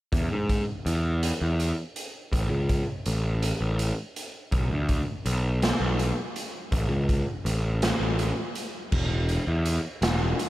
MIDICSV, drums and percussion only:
0, 0, Header, 1, 2, 480
1, 0, Start_track
1, 0, Tempo, 734394
1, 83, Time_signature, 6, 3, 24, 8
1, 6856, End_track
2, 0, Start_track
2, 0, Title_t, "Drums"
2, 82, Note_on_c, 9, 36, 87
2, 82, Note_on_c, 9, 42, 63
2, 147, Note_off_c, 9, 42, 0
2, 148, Note_off_c, 9, 36, 0
2, 323, Note_on_c, 9, 36, 64
2, 323, Note_on_c, 9, 42, 53
2, 388, Note_off_c, 9, 42, 0
2, 389, Note_off_c, 9, 36, 0
2, 565, Note_on_c, 9, 42, 50
2, 630, Note_off_c, 9, 42, 0
2, 803, Note_on_c, 9, 42, 77
2, 869, Note_off_c, 9, 42, 0
2, 1044, Note_on_c, 9, 42, 52
2, 1109, Note_off_c, 9, 42, 0
2, 1281, Note_on_c, 9, 42, 52
2, 1346, Note_off_c, 9, 42, 0
2, 1522, Note_on_c, 9, 36, 91
2, 1523, Note_on_c, 9, 42, 71
2, 1587, Note_off_c, 9, 36, 0
2, 1588, Note_off_c, 9, 42, 0
2, 1760, Note_on_c, 9, 42, 57
2, 1761, Note_on_c, 9, 36, 62
2, 1825, Note_off_c, 9, 42, 0
2, 1827, Note_off_c, 9, 36, 0
2, 1997, Note_on_c, 9, 42, 55
2, 2063, Note_off_c, 9, 42, 0
2, 2239, Note_on_c, 9, 42, 70
2, 2304, Note_off_c, 9, 42, 0
2, 2478, Note_on_c, 9, 42, 54
2, 2543, Note_off_c, 9, 42, 0
2, 2721, Note_on_c, 9, 42, 49
2, 2786, Note_off_c, 9, 42, 0
2, 2955, Note_on_c, 9, 42, 66
2, 2958, Note_on_c, 9, 36, 87
2, 3021, Note_off_c, 9, 42, 0
2, 3023, Note_off_c, 9, 36, 0
2, 3194, Note_on_c, 9, 42, 55
2, 3196, Note_on_c, 9, 36, 65
2, 3260, Note_off_c, 9, 42, 0
2, 3262, Note_off_c, 9, 36, 0
2, 3436, Note_on_c, 9, 42, 51
2, 3501, Note_off_c, 9, 42, 0
2, 3676, Note_on_c, 9, 42, 69
2, 3682, Note_on_c, 9, 38, 95
2, 3742, Note_off_c, 9, 42, 0
2, 3747, Note_off_c, 9, 38, 0
2, 3917, Note_on_c, 9, 42, 53
2, 3983, Note_off_c, 9, 42, 0
2, 4156, Note_on_c, 9, 42, 49
2, 4221, Note_off_c, 9, 42, 0
2, 4393, Note_on_c, 9, 42, 70
2, 4395, Note_on_c, 9, 36, 95
2, 4458, Note_off_c, 9, 42, 0
2, 4460, Note_off_c, 9, 36, 0
2, 4634, Note_on_c, 9, 36, 73
2, 4634, Note_on_c, 9, 42, 52
2, 4699, Note_off_c, 9, 42, 0
2, 4700, Note_off_c, 9, 36, 0
2, 4876, Note_on_c, 9, 42, 60
2, 4941, Note_off_c, 9, 42, 0
2, 5112, Note_on_c, 9, 42, 81
2, 5118, Note_on_c, 9, 38, 102
2, 5177, Note_off_c, 9, 42, 0
2, 5183, Note_off_c, 9, 38, 0
2, 5352, Note_on_c, 9, 42, 58
2, 5418, Note_off_c, 9, 42, 0
2, 5590, Note_on_c, 9, 42, 51
2, 5656, Note_off_c, 9, 42, 0
2, 5831, Note_on_c, 9, 49, 83
2, 5833, Note_on_c, 9, 36, 93
2, 5896, Note_off_c, 9, 49, 0
2, 5899, Note_off_c, 9, 36, 0
2, 6070, Note_on_c, 9, 42, 53
2, 6136, Note_off_c, 9, 42, 0
2, 6310, Note_on_c, 9, 42, 59
2, 6376, Note_off_c, 9, 42, 0
2, 6551, Note_on_c, 9, 42, 72
2, 6557, Note_on_c, 9, 38, 107
2, 6616, Note_off_c, 9, 42, 0
2, 6622, Note_off_c, 9, 38, 0
2, 6793, Note_on_c, 9, 42, 58
2, 6856, Note_off_c, 9, 42, 0
2, 6856, End_track
0, 0, End_of_file